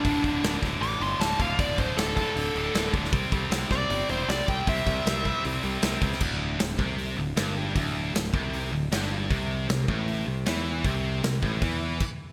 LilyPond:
<<
  \new Staff \with { instrumentName = "Lead electric guitar" } { \time 4/4 \key c \lydian \tempo 4 = 156 d'4. r8 d'''8 c'''8 a''8 f''8 | d''8 c''8 a'8 a'2 r8 | r4. d''4 c''8 d''8 g''8 | e''2 r2 |
r1 | r1 | r1 | r1 | }
  \new Staff \with { instrumentName = "Distorted electric guitar" } { \clef bass \time 4/4 \key c \lydian <d, a, d>8 <d, a, d>8 <d, a, d>8 <d, a, d>8 <d, a, d>8 <d, a, d>8 <d, a, d>8 <d, a, d>8 | <d, a, d>8 <d, a, d>8 <d, a, d>8 <d, a, d>8 <d, a, d>8 <d, a, d>8 <d, a, d>8 <d, a, d>8 | <c g c'>8 <c g c'>8 <c g c'>8 <c g c'>8 <c g c'>8 <c g c'>8 <c g c'>8 <c g c'>8 | <c g c'>8 <c g c'>8 <c g c'>8 <c g c'>8 <c g c'>8 <c g c'>8 <c g c'>8 <c g c'>8 |
d,4 d,8 c4 d,8 g,4 | d,4 d,8 c4 d,8 g,4 | c4 c8 a,4 c8 e4 | c4 c8 a,8 e4 r4 | }
  \new Staff \with { instrumentName = "Distorted electric guitar" } { \clef bass \time 4/4 \key c \lydian <d, a, d>8 <d, a, d>8 <d, a, d>8 <d, a, d>8 <d, a, d>8 <d, a, d>8 <d, a, d>8 <d, a, d>8 | <d, a, d>8 <d, a, d>8 <d, a, d>8 <d, a, d>8 <d, a, d>8 <d, a, d>8 <d, a, d>8 <d, a, d>8 | <c g c'>8 <c g c'>8 <c g c'>8 <c g c'>8 <c g c'>8 <c g c'>8 <c g c'>8 <c g c'>8 | <c g c'>8 <c g c'>8 <c g c'>8 <c g c'>8 <c g c'>8 <c g c'>8 <c g c'>8 <c g c'>8 |
d,4 d,8 c4 d,8 g,4 | d,4 d,8 c4 d,8 g,4 | c4 c8 a,4 c8 e4 | c4 c8 a,8 e4 r4 | }
  \new Staff \with { instrumentName = "Picked electric bass" } { \clef bass \time 4/4 \key c \lydian d,,8 d,,8 d,,8 d,,8 a,,8 g,,8 d,,8 d,,8 | d,,8 d,,8 d,,4 d,,8 d,,8 d,,8 d,,8 | c,8 c,8 c,8 c,8 g,,8 e,,8 c,8 c,8 | c,8 c,8 c,4 c,8 c,8 c,8 cis,8 |
d,,4 d,,8 c,4 d,,8 g,,4 | d,,4 d,,8 c,4 d,,8 g,,4 | c,4 c,8 a,,4 c,8 e,4 | c,4 c,8 a,,8 e,4 r4 | }
  \new DrumStaff \with { instrumentName = "Drums" } \drummode { \time 4/4 <hho bd>8 <hho bd>8 <hho sn>8 <hho bd sn>8 hho8 hho8 <hho sn>8 <hho bd>8 | <hho bd>8 <hho bd>8 <hho sn>8 <hho bd>8 hho8 hho8 <hho sn>8 <hho bd>16 sn16 | <hho bd>8 <hho bd>8 <hho sn>8 <hho bd sn>8 hho8 hho8 <hho sn>8 <hho bd>8 | <hho bd>8 <hho bd>8 <hho sn>8 <hho bd>8 hho8 hho8 <hho sn>8 <hho bd>16 sn16 |
<cymc bd>4 <hho sn>8 bd8 hho4 <hho sn>4 | <hho bd>4 <hho sn>8 bd8 hho4 <hho sn>16 sn8. | <hho bd>4 <hho sn>8 bd8 hho4 <hho sn>16 sn8. | <hho bd>4 <hho sn>8 bd8 <hho bd>4 <cymc bd>4 | }
>>